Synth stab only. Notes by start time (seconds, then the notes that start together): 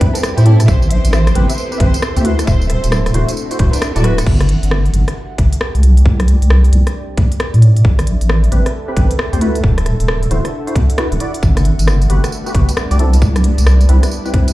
0.01 C4 E4 B4
0.37 C4 E4 C5
0.46 C4 G4 A4
1.35 C4 G4 B4
1.72 C4 G4 B4
1.80 C4 G4 B4
2.17 C4 G4 C5
2.25 E4 F#4 B4
3.14 E4 F#4 C5
3.51 E4 F#4 C5
3.59 E4 F#4 C5
3.96 E4 F#4 D5
4.04 E4 F#4 B4
8.52 C4 G4 B4
8.88 C4 G4 B4
8.96 C4 G4 B4
9.33 C4 G4 C5
9.41 E4 F#4 B4
10.31 E4 F#4 C5
10.67 E4 F#4 C5
10.98 E4 F#4 B4
11.20 E4 F#4 D5
12.10 F#4 G4 B4
12.46 F#4 G4 B4
12.54 F#4 G4 B4
12.91 F#4 G4 D5
12.99 C4 E4 A4
13.89 C4 E4 B4
14.25 C4 E4 B4
14.34 C4 E4 B4